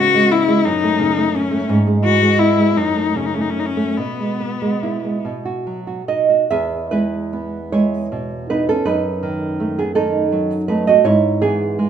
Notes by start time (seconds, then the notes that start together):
Already playing: C#3 B3
0.00 F#4
0.15 G#3
0.31 B3 E4
0.48 G#3
0.65 F#2 D#4
0.84 A3
0.99 C#3
1.17 A3
1.35 C#4
1.51 A3
1.69 G#2
1.87 G#3
2.04 E3 F#4
2.21 G#3
2.39 B3 E4
2.58 G#3
2.76 F#2 D#4
2.96 A3
3.15 C#3 C#4
3.26 D#4
3.35 A3 C#4
3.41 D#4
3.50 C#4
3.56 C#4 D#4
3.66 C#4
3.77 A3
3.98 B2 B3
4.20 G#3
4.40 B3
4.62 G#3
4.83 E4
5.04 G#3
5.25 B2
5.45 F#4
5.67 F#3
5.87 F#4
6.08 D#4 F#4 D#5
6.30 F#4
6.51 E2 G#4 E5
6.91 G#3 E4 B4
7.33 B3
7.72 G#3 E4 C#5
8.12 B2
8.50 B3 D#4 B4
8.69 C#4 A4
8.85 F#2 D#4 B4
9.23 D#3
9.60 A3
9.79 B3 G#4
9.95 D#3 D#4 A4
10.32 F#3
10.68 A3 D#4 B4
10.87 F#4 D#5
11.04 G#2 E4 C#5
11.42 E3 B3 G#4
11.79 G#3